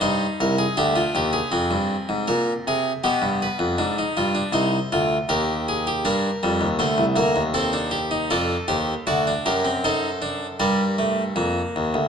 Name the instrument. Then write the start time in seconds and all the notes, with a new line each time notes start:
harpsichord
0.01 G2 D#4 C5
0.40 C2 A#4
0.58 G#4
0.77 D2 D4 G4
0.96 F4
1.15 D#2 G4
1.33 G#4
1.52 F2 C4
1.71 G2
2.09 G#2
2.27 A#2 A#4
2.67 C3 G#4
3.04 B2 B3 G4
3.22 G2
3.42 B4
3.59 F2
3.78 G#2 D4
3.99 D#4
4.17 G2 F4
4.35 D4
4.52 C2 D#4 C5
4.92 D2 F4
5.29 D#2 G4 A#4
5.69 G#4
5.87 G4
6.05 G2 D4 A#4
6.43 F2 G3
6.61 D#2
6.79 D2 A3 C5
6.98 C2
7.16 D2 A#3 A#4
7.36 D#2
7.54 C4 A4 C5
7.73 D4
7.91 G4
8.11 D#4
8.30 F2 F4 A4 D5
8.68 D#2 G4 C5
9.07 D2 F#4 D5
9.27 D4
9.46 F#2 G4 A#4
9.65 C4
9.84 D#4 A4 C5
10.22 D4
10.60 G2 G3 A#4 D5
10.98 A3
11.36 F2 A#3
11.76 D#2
11.94 D2